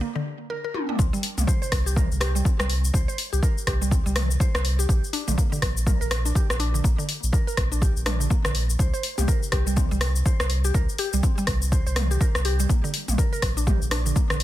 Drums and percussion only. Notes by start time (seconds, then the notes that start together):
0.74 high tom
0.89 mid tom
0.99 kick, shaker
1.14 shaker
1.23 open hi-hat
1.38 mid tom, shaker
1.48 kick, shaker
1.63 shaker
1.72 kick, cross-stick, open hi-hat
1.87 shaker
1.97 kick, mid tom, shaker
2.12 shaker
2.21 cross-stick, open hi-hat
2.36 shaker
2.45 kick, shaker
2.60 cross-stick, shaker
2.70 open hi-hat
2.85 shaker
2.94 kick, shaker
3.09 shaker
3.18 open hi-hat
3.33 shaker
3.43 kick, shaker
3.58 shaker
3.67 kick, cross-stick, open hi-hat
3.82 shaker
3.91 kick, shaker
4.07 shaker
4.16 cross-stick, mid tom, open hi-hat
4.31 shaker
4.40 kick, shaker
4.55 cross-stick, shaker
4.65 open hi-hat
4.80 shaker
4.89 kick, shaker
5.04 shaker
5.13 open hi-hat
5.28 mid tom, shaker
5.38 kick, shaker
5.53 shaker
5.62 kick, cross-stick, open hi-hat
5.77 shaker
5.87 kick, mid tom, shaker
6.02 shaker
6.11 cross-stick, open hi-hat
6.26 shaker
6.35 kick, shaker
6.50 cross-stick, shaker
6.60 open hi-hat
6.75 shaker
6.84 kick, shaker
6.99 shaker
7.09 open hi-hat
7.24 shaker
7.33 kick, shaker
7.48 shaker
7.57 kick, cross-stick, open hi-hat
7.72 shaker
7.82 kick, shaker
7.97 shaker
8.06 cross-stick, mid tom, open hi-hat
8.21 shaker
8.31 kick, shaker
8.45 cross-stick, shaker
8.55 open hi-hat
8.70 shaker
8.79 kick, shaker
8.94 shaker
9.03 open hi-hat
9.18 mid tom, shaker
9.28 kick, shaker
9.43 shaker
9.52 kick, cross-stick, open hi-hat
9.67 shaker
9.76 kick, mid tom, shaker
9.92 shaker
10.01 cross-stick, open hi-hat
10.16 shaker
10.26 kick, shaker
10.40 cross-stick, shaker
10.50 open hi-hat
10.65 shaker
10.74 kick, shaker
10.89 shaker
10.98 open hi-hat
11.13 shaker
11.23 kick, shaker
11.38 shaker
11.47 kick, cross-stick, open hi-hat
11.62 shaker
11.72 kick, shaker
11.87 shaker
11.96 cross-stick, mid tom, open hi-hat
12.11 shaker
12.21 kick, shaker
12.35 cross-stick, shaker
12.45 open hi-hat
12.60 shaker
12.69 kick, shaker
12.85 shaker
12.94 open hi-hat
13.08 mid tom, shaker
13.18 kick, shaker
13.33 shaker
13.42 kick, cross-stick, open hi-hat
13.58 shaker
13.67 kick, mid tom, shaker
13.82 shaker
13.91 cross-stick, open hi-hat
14.06 shaker
14.16 kick, shaker
14.30 cross-stick, shaker
14.40 open hi-hat